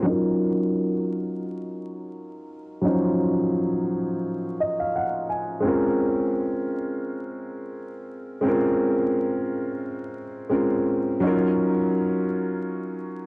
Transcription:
0.02 F#3 C#4 D#4
0.08 F4 A#4
2.81 F#3 C#4 D#4
2.87 F3 C5
4.60 D#5
4.80 F5
4.96 F#5
5.29 G#5
5.60 G#3 C4 C#4
5.66 F4 A#4
8.41 G#3 C4 C#4
8.47 F4 A#4
10.49 G#3 C4 C#4 F4 A#4
11.20 F#3 C#4 D#4
11.25 F4 A#4

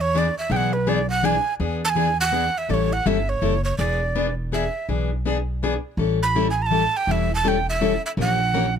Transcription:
Already playing: E2
0.01 C#5
0.15 E3 B3 D4 G#4 D5
0.38 E5
0.50 B1 E3 B3 D4 G#4 G5
0.56 F#5
0.73 B4
0.87 E3 B3 D4 G#4 D5
1.10 F#5
1.23 E3 B3 D4 G#4 G#5
1.60 E2 E3 B3 D4 G#4
1.85 A5
1.90 G#5
1.95 E3 B3 D4 G#4
2.21 F#5
2.32 E3 B3 D4 G#4
2.58 E5
2.69 A1 E3 G3 C#4 E4 A4 D5
2.74 C#5
2.93 F#5
3.06 G1 E3 G3 C#4 E4 A4 E5
3.29 C#5
3.41 F#1 E3 G3 C#4 E4 A4
3.65 C#5
3.78 E1 E3 B3 D4 G#4 D5
4.15 E3 B3 D4 G#4
4.52 E3 B3 D4 G#4 E5
4.89 B1 E3 B3 D4 G#4
5.25 E3 B3 D4 G#4
5.63 E3 B3 D4 G#4
5.97 A1 E3 G3 C#4 E4 A4
6.23 B5
6.35 E3 G3 C#4 E4 A4
6.50 G#5
6.62 A#5
6.66 A5
6.71 E3 G3 C#4 E4 A4
6.97 G5
7.07 E1 E3 G3 C#4 E4 A4
7.11 E5
7.35 A5
7.44 E3 G3 C#4 E4 A4
7.48 G5
7.69 E5
7.81 E3 G3 C#4 E4 A4
8.06 E5
8.17 A#1 E3 A#3 C#4 G4 A#4 F#5
8.54 E3 A#3 C#4 G4 A#4

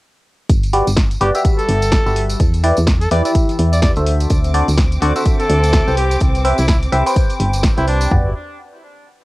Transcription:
0.49 G1, kick, closed hi-hat, tambourine
0.63 closed hi-hat, tambourine
0.73 G3 F#4 G4 B4 D5, open hi-hat
0.87 G1, closed hi-hat, tambourine
0.97 kick, snare, closed hi-hat
1.11 closed hi-hat, tambourine
1.21 G1 G3 F#4 G4 B4 D5, open hi-hat
1.35 G3 F#4 G4 B4 E5, closed hi-hat, tambourine
1.45 kick, closed hi-hat, tambourine
1.59 A4, closed hi-hat, tambourine
1.69 G1, open hi-hat
1.82 closed hi-hat, tambourine
1.92 kick, snare, closed hi-hat, tambourine
2.06 G1 G3 F#4 G4 B4 E5, tambourine
2.16 open hi-hat
2.30 closed hi-hat, tambourine
2.40 E2, kick, closed hi-hat, tambourine
2.54 closed hi-hat, tambourine
2.64 E3 E4 G4 B4 D5, open hi-hat
2.77 E2, closed hi-hat, tambourine
2.87 kick, snare, closed hi-hat, tambourine
3.02 A4, closed hi-hat, tambourine
3.11 E2 E3 E4 G4 B4 D5, open hi-hat
3.25 E3 E4 G4 B4 D5 E5, open hi-hat, tambourine
3.35 kick, closed hi-hat, tambourine
3.49 closed hi-hat, tambourine
3.59 E2, open hi-hat
3.73 D5, closed hi-hat, tambourine
3.82 D5, kick, snare, closed hi-hat, tambourine
3.96 D2 D3 F#4 A4 C5 E5, closed hi-hat, tambourine
4.07 open hi-hat
4.20 closed hi-hat, tambourine
4.30 D2 C4 D6, kick, closed hi-hat, tambourine
4.44 closed hi-hat, tambourine
4.54 D3 F#4 A4 C5 D5, open hi-hat
4.68 D2, closed hi-hat, tambourine
4.77 kick, snare, closed hi-hat, tambourine
4.92 closed hi-hat, tambourine
5.02 D2 D3 F#4 A4 C5 D5, open hi-hat
5.16 D3 F#4 A4 C5 E5, closed hi-hat, tambourine
5.25 kick, closed hi-hat, tambourine
5.40 A4, closed hi-hat, tambourine
5.50 D2, open hi-hat
5.63 closed hi-hat, tambourine
5.73 kick, snare, closed hi-hat, tambourine
5.87 C2 C4 G4 B4 C5 G5, tambourine
5.97 G4, open hi-hat
6.11 closed hi-hat, tambourine
6.20 C2, kick, closed hi-hat, tambourine
6.35 closed hi-hat, tambourine
6.45 C4 G4 B4 C5 E5, open hi-hat
6.58 C2 E4, closed hi-hat, tambourine
6.68 E4, kick, snare, closed hi-hat, tambourine
6.83 closed hi-hat, tambourine
6.92 C2 C4 G4 B4 C5 E5, open hi-hat
7.06 C4 G4 B4 C5 G5, open hi-hat, tambourine
7.16 kick, closed hi-hat, tambourine
7.30 closed hi-hat, tambourine
7.40 G1, open hi-hat
7.53 closed hi-hat, tambourine
7.63 kick, snare, closed hi-hat, tambourine
7.77 C2 C4 E4 G4 B4 C5 G5, closed hi-hat, tambourine
7.88 D4, open hi-hat
8.01 closed hi-hat, tambourine
8.11 G1 F#4 G4 B4 D5, kick, floor tom

